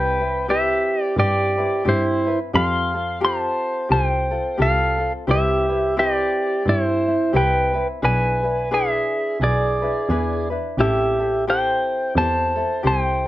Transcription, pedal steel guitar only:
0, 0, Header, 1, 2, 480
1, 0, Start_track
1, 0, Key_signature, 0, "major"
1, 0, Tempo, 686499
1, 1777, Time_signature, 4, 2, 24, 8
1, 9283, End_track
2, 0, Start_track
2, 0, Title_t, "Pedal steel guitar"
2, 0, Program_c, 0, 26
2, 0, Note_on_c, 0, 71, 74
2, 0, Note_on_c, 0, 79, 93
2, 322, Note_off_c, 0, 71, 0
2, 351, Note_on_c, 0, 76, 85
2, 357, Note_on_c, 0, 67, 65
2, 361, Note_off_c, 0, 79, 0
2, 714, Note_off_c, 0, 76, 0
2, 714, Note_on_c, 0, 74, 85
2, 800, Note_off_c, 0, 67, 0
2, 833, Note_off_c, 0, 74, 0
2, 835, Note_on_c, 0, 74, 90
2, 837, Note_on_c, 0, 67, 71
2, 1279, Note_off_c, 0, 67, 0
2, 1319, Note_on_c, 0, 72, 81
2, 1320, Note_off_c, 0, 74, 0
2, 1322, Note_on_c, 0, 64, 62
2, 1666, Note_off_c, 0, 72, 0
2, 1668, Note_off_c, 0, 64, 0
2, 1787, Note_on_c, 0, 84, 93
2, 1795, Note_on_c, 0, 77, 77
2, 2238, Note_off_c, 0, 77, 0
2, 2269, Note_on_c, 0, 81, 96
2, 2275, Note_off_c, 0, 84, 0
2, 2278, Note_on_c, 0, 72, 73
2, 2714, Note_off_c, 0, 81, 0
2, 2719, Note_off_c, 0, 72, 0
2, 2739, Note_on_c, 0, 79, 91
2, 2749, Note_on_c, 0, 72, 73
2, 3194, Note_off_c, 0, 72, 0
2, 3227, Note_off_c, 0, 79, 0
2, 3228, Note_on_c, 0, 69, 65
2, 3230, Note_on_c, 0, 77, 85
2, 3579, Note_off_c, 0, 69, 0
2, 3579, Note_off_c, 0, 77, 0
2, 3710, Note_on_c, 0, 67, 65
2, 3713, Note_on_c, 0, 76, 86
2, 4154, Note_off_c, 0, 67, 0
2, 4187, Note_off_c, 0, 76, 0
2, 4190, Note_on_c, 0, 74, 87
2, 4194, Note_on_c, 0, 67, 69
2, 4636, Note_off_c, 0, 67, 0
2, 4676, Note_off_c, 0, 74, 0
2, 4678, Note_on_c, 0, 64, 67
2, 4679, Note_on_c, 0, 72, 86
2, 5118, Note_off_c, 0, 64, 0
2, 5149, Note_on_c, 0, 79, 83
2, 5153, Note_on_c, 0, 71, 67
2, 5160, Note_off_c, 0, 72, 0
2, 5500, Note_off_c, 0, 79, 0
2, 5502, Note_off_c, 0, 71, 0
2, 5625, Note_on_c, 0, 71, 73
2, 5629, Note_on_c, 0, 80, 89
2, 6072, Note_off_c, 0, 71, 0
2, 6109, Note_on_c, 0, 68, 65
2, 6112, Note_on_c, 0, 76, 83
2, 6115, Note_off_c, 0, 80, 0
2, 6554, Note_off_c, 0, 68, 0
2, 6595, Note_on_c, 0, 68, 58
2, 6598, Note_off_c, 0, 76, 0
2, 6598, Note_on_c, 0, 74, 75
2, 7326, Note_off_c, 0, 68, 0
2, 7328, Note_off_c, 0, 74, 0
2, 7554, Note_on_c, 0, 67, 68
2, 7556, Note_on_c, 0, 76, 87
2, 7997, Note_off_c, 0, 76, 0
2, 7998, Note_off_c, 0, 67, 0
2, 8039, Note_on_c, 0, 72, 69
2, 8041, Note_on_c, 0, 79, 86
2, 8480, Note_off_c, 0, 72, 0
2, 8512, Note_off_c, 0, 79, 0
2, 8513, Note_on_c, 0, 72, 75
2, 8515, Note_on_c, 0, 81, 93
2, 8958, Note_off_c, 0, 72, 0
2, 8998, Note_off_c, 0, 81, 0
2, 8998, Note_on_c, 0, 72, 66
2, 9000, Note_on_c, 0, 79, 84
2, 9283, Note_off_c, 0, 72, 0
2, 9283, Note_off_c, 0, 79, 0
2, 9283, End_track
0, 0, End_of_file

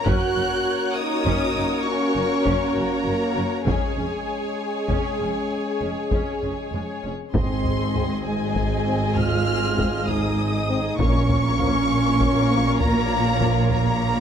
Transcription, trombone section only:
0, 0, Header, 1, 2, 480
1, 0, Start_track
1, 0, Key_signature, -5, "minor"
1, 0, Tempo, 599401
1, 50, Time_signature, 12, 3, 24, 8
1, 2449, Tempo, 611621
1, 7249, Tempo, 604839
1, 11238, End_track
2, 0, Start_track
2, 0, Title_t, "Trombone section"
2, 0, Program_c, 0, 61
2, 50, Note_on_c, 0, 66, 91
2, 754, Note_off_c, 0, 66, 0
2, 769, Note_on_c, 0, 63, 84
2, 1485, Note_off_c, 0, 63, 0
2, 1491, Note_on_c, 0, 61, 67
2, 2212, Note_off_c, 0, 61, 0
2, 2221, Note_on_c, 0, 58, 74
2, 2934, Note_off_c, 0, 58, 0
2, 2940, Note_on_c, 0, 56, 58
2, 5545, Note_off_c, 0, 56, 0
2, 5809, Note_on_c, 0, 60, 69
2, 6496, Note_off_c, 0, 60, 0
2, 6539, Note_on_c, 0, 56, 64
2, 7257, Note_off_c, 0, 56, 0
2, 7258, Note_on_c, 0, 65, 79
2, 7961, Note_off_c, 0, 65, 0
2, 7971, Note_on_c, 0, 63, 66
2, 8693, Note_on_c, 0, 61, 97
2, 8694, Note_off_c, 0, 63, 0
2, 10102, Note_off_c, 0, 61, 0
2, 10136, Note_on_c, 0, 58, 91
2, 10836, Note_off_c, 0, 58, 0
2, 10853, Note_on_c, 0, 58, 93
2, 11238, Note_off_c, 0, 58, 0
2, 11238, End_track
0, 0, End_of_file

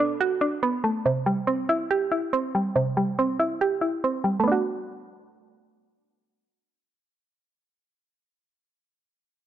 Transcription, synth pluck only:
0, 0, Header, 1, 2, 480
1, 0, Start_track
1, 0, Tempo, 425532
1, 1188, Time_signature, 4, 2, 24, 8
1, 10678, End_track
2, 0, Start_track
2, 0, Title_t, "Synth pluck"
2, 0, Program_c, 0, 84
2, 0, Note_on_c, 0, 47, 94
2, 0, Note_on_c, 0, 57, 84
2, 0, Note_on_c, 0, 59, 93
2, 0, Note_on_c, 0, 62, 91
2, 231, Note_on_c, 0, 66, 100
2, 451, Note_off_c, 0, 62, 0
2, 464, Note_on_c, 0, 62, 90
2, 471, Note_off_c, 0, 47, 0
2, 694, Note_off_c, 0, 59, 0
2, 705, Note_off_c, 0, 57, 0
2, 708, Note_on_c, 0, 59, 91
2, 946, Note_on_c, 0, 57, 79
2, 1186, Note_off_c, 0, 57, 0
2, 1186, Note_off_c, 0, 62, 0
2, 1187, Note_off_c, 0, 59, 0
2, 1189, Note_off_c, 0, 66, 0
2, 1191, Note_on_c, 0, 48, 89
2, 1424, Note_on_c, 0, 55, 82
2, 1661, Note_on_c, 0, 60, 83
2, 1907, Note_on_c, 0, 64, 89
2, 2150, Note_on_c, 0, 67, 99
2, 2372, Note_off_c, 0, 64, 0
2, 2386, Note_on_c, 0, 64, 81
2, 2389, Note_off_c, 0, 48, 0
2, 2615, Note_off_c, 0, 60, 0
2, 2626, Note_off_c, 0, 55, 0
2, 2629, Note_on_c, 0, 60, 90
2, 2873, Note_on_c, 0, 55, 79
2, 3108, Note_on_c, 0, 48, 92
2, 3336, Note_off_c, 0, 55, 0
2, 3348, Note_off_c, 0, 67, 0
2, 3350, Note_on_c, 0, 55, 85
2, 3581, Note_off_c, 0, 60, 0
2, 3587, Note_off_c, 0, 64, 0
2, 3595, Note_on_c, 0, 60, 88
2, 3829, Note_on_c, 0, 64, 86
2, 4074, Note_on_c, 0, 67, 104
2, 4288, Note_off_c, 0, 64, 0
2, 4302, Note_on_c, 0, 64, 86
2, 4308, Note_off_c, 0, 48, 0
2, 4543, Note_off_c, 0, 60, 0
2, 4548, Note_off_c, 0, 55, 0
2, 4556, Note_on_c, 0, 60, 87
2, 4784, Note_on_c, 0, 55, 79
2, 4958, Note_on_c, 0, 57, 81
2, 5003, Note_on_c, 0, 59, 77
2, 5024, Note_off_c, 0, 64, 0
2, 5025, Note_off_c, 0, 55, 0
2, 5030, Note_off_c, 0, 67, 0
2, 5032, Note_off_c, 0, 60, 0
2, 5049, Note_on_c, 0, 62, 76
2, 5094, Note_on_c, 0, 66, 88
2, 9908, Note_off_c, 0, 57, 0
2, 9953, Note_off_c, 0, 59, 0
2, 9998, Note_off_c, 0, 62, 0
2, 10044, Note_off_c, 0, 66, 0
2, 10678, End_track
0, 0, End_of_file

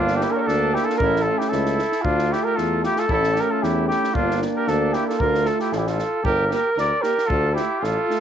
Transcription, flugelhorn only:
0, 0, Header, 1, 2, 480
1, 0, Start_track
1, 0, Key_signature, -1, "minor"
1, 0, Tempo, 525394
1, 900, Time_signature, 2, 2, 24, 8
1, 7492, End_track
2, 0, Start_track
2, 0, Title_t, "Flugelhorn"
2, 0, Program_c, 0, 56
2, 0, Note_on_c, 0, 65, 92
2, 145, Note_on_c, 0, 67, 82
2, 159, Note_off_c, 0, 65, 0
2, 285, Note_on_c, 0, 70, 86
2, 298, Note_off_c, 0, 67, 0
2, 322, Note_on_c, 0, 73, 64
2, 335, Note_off_c, 0, 70, 0
2, 348, Note_on_c, 0, 70, 86
2, 362, Note_off_c, 0, 73, 0
2, 425, Note_on_c, 0, 69, 97
2, 439, Note_off_c, 0, 70, 0
2, 674, Note_on_c, 0, 67, 90
2, 688, Note_off_c, 0, 69, 0
2, 769, Note_on_c, 0, 69, 84
2, 783, Note_off_c, 0, 67, 0
2, 884, Note_off_c, 0, 69, 0
2, 889, Note_on_c, 0, 70, 103
2, 1113, Note_on_c, 0, 69, 91
2, 1126, Note_off_c, 0, 70, 0
2, 1261, Note_on_c, 0, 67, 78
2, 1275, Note_off_c, 0, 69, 0
2, 1362, Note_on_c, 0, 69, 80
2, 1375, Note_off_c, 0, 67, 0
2, 1843, Note_on_c, 0, 65, 101
2, 1856, Note_off_c, 0, 69, 0
2, 2122, Note_on_c, 0, 67, 83
2, 2136, Note_off_c, 0, 65, 0
2, 2227, Note_on_c, 0, 70, 86
2, 2241, Note_off_c, 0, 67, 0
2, 2337, Note_on_c, 0, 69, 76
2, 2351, Note_off_c, 0, 70, 0
2, 2579, Note_off_c, 0, 69, 0
2, 2596, Note_on_c, 0, 67, 90
2, 2728, Note_on_c, 0, 69, 85
2, 2742, Note_off_c, 0, 67, 0
2, 2831, Note_off_c, 0, 69, 0
2, 2854, Note_on_c, 0, 69, 96
2, 3106, Note_on_c, 0, 70, 84
2, 3119, Note_off_c, 0, 69, 0
2, 3204, Note_on_c, 0, 69, 80
2, 3218, Note_off_c, 0, 70, 0
2, 3313, Note_on_c, 0, 67, 68
2, 3327, Note_off_c, 0, 69, 0
2, 3533, Note_off_c, 0, 67, 0
2, 3538, Note_on_c, 0, 67, 94
2, 3784, Note_on_c, 0, 65, 86
2, 3798, Note_off_c, 0, 67, 0
2, 4022, Note_off_c, 0, 65, 0
2, 4165, Note_on_c, 0, 70, 81
2, 4277, Note_on_c, 0, 69, 79
2, 4291, Note_off_c, 0, 70, 0
2, 4509, Note_on_c, 0, 67, 78
2, 4522, Note_off_c, 0, 69, 0
2, 4630, Note_off_c, 0, 67, 0
2, 4634, Note_on_c, 0, 69, 81
2, 4743, Note_on_c, 0, 70, 98
2, 4756, Note_off_c, 0, 69, 0
2, 4994, Note_on_c, 0, 69, 85
2, 5007, Note_off_c, 0, 70, 0
2, 5113, Note_off_c, 0, 69, 0
2, 5118, Note_on_c, 0, 67, 76
2, 5229, Note_on_c, 0, 69, 60
2, 5243, Note_off_c, 0, 67, 0
2, 5278, Note_on_c, 0, 67, 54
2, 5291, Note_off_c, 0, 69, 0
2, 5367, Note_on_c, 0, 69, 72
2, 5381, Note_off_c, 0, 67, 0
2, 5707, Note_off_c, 0, 69, 0
2, 5712, Note_on_c, 0, 70, 94
2, 5930, Note_off_c, 0, 70, 0
2, 5982, Note_on_c, 0, 70, 89
2, 6186, Note_off_c, 0, 70, 0
2, 6202, Note_on_c, 0, 74, 89
2, 6411, Note_on_c, 0, 70, 97
2, 6425, Note_off_c, 0, 74, 0
2, 6646, Note_on_c, 0, 69, 103
2, 6660, Note_off_c, 0, 70, 0
2, 6893, Note_off_c, 0, 69, 0
2, 6897, Note_on_c, 0, 67, 75
2, 7153, Note_on_c, 0, 69, 85
2, 7166, Note_off_c, 0, 67, 0
2, 7492, Note_off_c, 0, 69, 0
2, 7492, End_track
0, 0, End_of_file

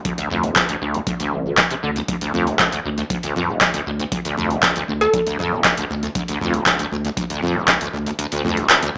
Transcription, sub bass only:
0, 0, Header, 1, 2, 480
1, 0, Start_track
1, 0, Key_signature, -1, "minor"
1, 0, Tempo, 508475
1, 49, Time_signature, 4, 2, 24, 8
1, 8473, End_track
2, 0, Start_track
2, 0, Title_t, "Sub bass"
2, 0, Program_c, 0, 38
2, 290, Note_on_c, 0, 38, 98
2, 474, Note_off_c, 0, 38, 0
2, 770, Note_on_c, 0, 38, 79
2, 954, Note_off_c, 0, 38, 0
2, 1249, Note_on_c, 0, 33, 78
2, 1433, Note_off_c, 0, 33, 0
2, 1729, Note_on_c, 0, 38, 89
2, 1913, Note_off_c, 0, 38, 0
2, 2209, Note_on_c, 0, 38, 96
2, 2393, Note_off_c, 0, 38, 0
2, 2690, Note_on_c, 0, 38, 77
2, 2874, Note_off_c, 0, 38, 0
2, 3169, Note_on_c, 0, 26, 91
2, 3353, Note_off_c, 0, 26, 0
2, 3649, Note_on_c, 0, 38, 90
2, 3833, Note_off_c, 0, 38, 0
2, 4130, Note_on_c, 0, 38, 97
2, 4313, Note_off_c, 0, 38, 0
2, 4609, Note_on_c, 0, 38, 78
2, 4793, Note_off_c, 0, 38, 0
2, 5088, Note_on_c, 0, 26, 91
2, 5273, Note_off_c, 0, 26, 0
2, 5571, Note_on_c, 0, 38, 92
2, 5754, Note_off_c, 0, 38, 0
2, 6050, Note_on_c, 0, 38, 95
2, 6234, Note_off_c, 0, 38, 0
2, 6530, Note_on_c, 0, 38, 79
2, 6714, Note_off_c, 0, 38, 0
2, 7010, Note_on_c, 0, 26, 93
2, 7194, Note_off_c, 0, 26, 0
2, 7489, Note_on_c, 0, 38, 90
2, 7673, Note_off_c, 0, 38, 0
2, 7970, Note_on_c, 0, 38, 98
2, 8154, Note_off_c, 0, 38, 0
2, 8473, End_track
0, 0, End_of_file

